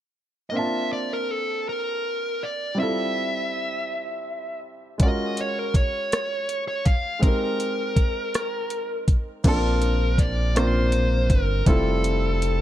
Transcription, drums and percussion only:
0, 0, Header, 1, 2, 480
1, 0, Start_track
1, 0, Tempo, 740741
1, 359, Time_signature, 6, 3, 24, 8
1, 8174, End_track
2, 0, Start_track
2, 0, Title_t, "Drums"
2, 3238, Note_on_c, 9, 42, 51
2, 3239, Note_on_c, 9, 36, 78
2, 3302, Note_off_c, 9, 42, 0
2, 3304, Note_off_c, 9, 36, 0
2, 3481, Note_on_c, 9, 42, 45
2, 3545, Note_off_c, 9, 42, 0
2, 3721, Note_on_c, 9, 36, 67
2, 3724, Note_on_c, 9, 42, 43
2, 3786, Note_off_c, 9, 36, 0
2, 3788, Note_off_c, 9, 42, 0
2, 3968, Note_on_c, 9, 42, 55
2, 3973, Note_on_c, 9, 37, 88
2, 4033, Note_off_c, 9, 42, 0
2, 4038, Note_off_c, 9, 37, 0
2, 4205, Note_on_c, 9, 42, 46
2, 4270, Note_off_c, 9, 42, 0
2, 4442, Note_on_c, 9, 42, 41
2, 4445, Note_on_c, 9, 36, 66
2, 4507, Note_off_c, 9, 42, 0
2, 4510, Note_off_c, 9, 36, 0
2, 4682, Note_on_c, 9, 36, 91
2, 4684, Note_on_c, 9, 42, 55
2, 4747, Note_off_c, 9, 36, 0
2, 4749, Note_off_c, 9, 42, 0
2, 4924, Note_on_c, 9, 42, 45
2, 4989, Note_off_c, 9, 42, 0
2, 5161, Note_on_c, 9, 36, 73
2, 5162, Note_on_c, 9, 42, 44
2, 5225, Note_off_c, 9, 36, 0
2, 5227, Note_off_c, 9, 42, 0
2, 5407, Note_on_c, 9, 42, 57
2, 5412, Note_on_c, 9, 37, 82
2, 5472, Note_off_c, 9, 42, 0
2, 5477, Note_off_c, 9, 37, 0
2, 5640, Note_on_c, 9, 42, 46
2, 5704, Note_off_c, 9, 42, 0
2, 5882, Note_on_c, 9, 36, 64
2, 5882, Note_on_c, 9, 42, 38
2, 5947, Note_off_c, 9, 36, 0
2, 5947, Note_off_c, 9, 42, 0
2, 6119, Note_on_c, 9, 36, 96
2, 6119, Note_on_c, 9, 42, 56
2, 6119, Note_on_c, 9, 49, 70
2, 6183, Note_off_c, 9, 49, 0
2, 6184, Note_off_c, 9, 36, 0
2, 6184, Note_off_c, 9, 42, 0
2, 6361, Note_on_c, 9, 42, 45
2, 6426, Note_off_c, 9, 42, 0
2, 6599, Note_on_c, 9, 36, 78
2, 6602, Note_on_c, 9, 42, 45
2, 6664, Note_off_c, 9, 36, 0
2, 6667, Note_off_c, 9, 42, 0
2, 6844, Note_on_c, 9, 42, 59
2, 6849, Note_on_c, 9, 37, 87
2, 6909, Note_off_c, 9, 42, 0
2, 6914, Note_off_c, 9, 37, 0
2, 7077, Note_on_c, 9, 42, 46
2, 7142, Note_off_c, 9, 42, 0
2, 7321, Note_on_c, 9, 36, 70
2, 7321, Note_on_c, 9, 42, 39
2, 7386, Note_off_c, 9, 36, 0
2, 7386, Note_off_c, 9, 42, 0
2, 7558, Note_on_c, 9, 36, 93
2, 7558, Note_on_c, 9, 42, 56
2, 7623, Note_off_c, 9, 36, 0
2, 7623, Note_off_c, 9, 42, 0
2, 7803, Note_on_c, 9, 42, 48
2, 7868, Note_off_c, 9, 42, 0
2, 8049, Note_on_c, 9, 42, 50
2, 8113, Note_off_c, 9, 42, 0
2, 8174, End_track
0, 0, End_of_file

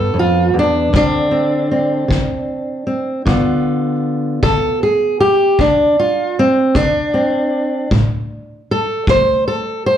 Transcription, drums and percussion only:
0, 0, Header, 1, 2, 480
1, 0, Start_track
1, 0, Tempo, 775194
1, 577, Time_signature, 12, 3, 24, 8
1, 6177, End_track
2, 0, Start_track
2, 0, Title_t, "Drums"
2, 580, Note_on_c, 9, 36, 69
2, 642, Note_off_c, 9, 36, 0
2, 1304, Note_on_c, 9, 36, 68
2, 1366, Note_off_c, 9, 36, 0
2, 2023, Note_on_c, 9, 36, 71
2, 2085, Note_off_c, 9, 36, 0
2, 2741, Note_on_c, 9, 36, 67
2, 2803, Note_off_c, 9, 36, 0
2, 3460, Note_on_c, 9, 36, 68
2, 3522, Note_off_c, 9, 36, 0
2, 4180, Note_on_c, 9, 36, 70
2, 4241, Note_off_c, 9, 36, 0
2, 4899, Note_on_c, 9, 36, 66
2, 4961, Note_off_c, 9, 36, 0
2, 5618, Note_on_c, 9, 36, 74
2, 5680, Note_off_c, 9, 36, 0
2, 6177, End_track
0, 0, End_of_file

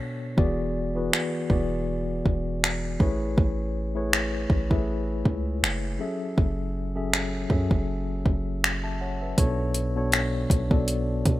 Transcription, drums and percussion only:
0, 0, Header, 1, 2, 480
1, 0, Start_track
1, 0, Tempo, 750000
1, 242, Time_signature, 4, 2, 24, 8
1, 7295, End_track
2, 0, Start_track
2, 0, Title_t, "Drums"
2, 241, Note_on_c, 9, 36, 115
2, 305, Note_off_c, 9, 36, 0
2, 726, Note_on_c, 9, 26, 106
2, 790, Note_off_c, 9, 26, 0
2, 959, Note_on_c, 9, 36, 88
2, 1023, Note_off_c, 9, 36, 0
2, 1444, Note_on_c, 9, 36, 86
2, 1508, Note_off_c, 9, 36, 0
2, 1689, Note_on_c, 9, 26, 110
2, 1753, Note_off_c, 9, 26, 0
2, 1920, Note_on_c, 9, 36, 93
2, 1984, Note_off_c, 9, 36, 0
2, 2161, Note_on_c, 9, 36, 107
2, 2225, Note_off_c, 9, 36, 0
2, 2645, Note_on_c, 9, 26, 105
2, 2709, Note_off_c, 9, 26, 0
2, 2878, Note_on_c, 9, 36, 84
2, 2942, Note_off_c, 9, 36, 0
2, 3013, Note_on_c, 9, 36, 87
2, 3077, Note_off_c, 9, 36, 0
2, 3363, Note_on_c, 9, 36, 84
2, 3427, Note_off_c, 9, 36, 0
2, 3608, Note_on_c, 9, 26, 110
2, 3672, Note_off_c, 9, 26, 0
2, 4081, Note_on_c, 9, 36, 105
2, 4145, Note_off_c, 9, 36, 0
2, 4566, Note_on_c, 9, 26, 102
2, 4630, Note_off_c, 9, 26, 0
2, 4799, Note_on_c, 9, 36, 91
2, 4863, Note_off_c, 9, 36, 0
2, 4933, Note_on_c, 9, 36, 87
2, 4997, Note_off_c, 9, 36, 0
2, 5284, Note_on_c, 9, 36, 86
2, 5348, Note_off_c, 9, 36, 0
2, 5531, Note_on_c, 9, 26, 108
2, 5595, Note_off_c, 9, 26, 0
2, 6002, Note_on_c, 9, 36, 105
2, 6002, Note_on_c, 9, 42, 69
2, 6066, Note_off_c, 9, 36, 0
2, 6066, Note_off_c, 9, 42, 0
2, 6237, Note_on_c, 9, 42, 78
2, 6301, Note_off_c, 9, 42, 0
2, 6479, Note_on_c, 9, 42, 73
2, 6486, Note_on_c, 9, 26, 103
2, 6543, Note_off_c, 9, 42, 0
2, 6550, Note_off_c, 9, 26, 0
2, 6720, Note_on_c, 9, 36, 86
2, 6726, Note_on_c, 9, 42, 75
2, 6784, Note_off_c, 9, 36, 0
2, 6790, Note_off_c, 9, 42, 0
2, 6854, Note_on_c, 9, 36, 91
2, 6918, Note_off_c, 9, 36, 0
2, 6962, Note_on_c, 9, 42, 71
2, 7026, Note_off_c, 9, 42, 0
2, 7203, Note_on_c, 9, 42, 67
2, 7204, Note_on_c, 9, 36, 85
2, 7267, Note_off_c, 9, 42, 0
2, 7268, Note_off_c, 9, 36, 0
2, 7295, End_track
0, 0, End_of_file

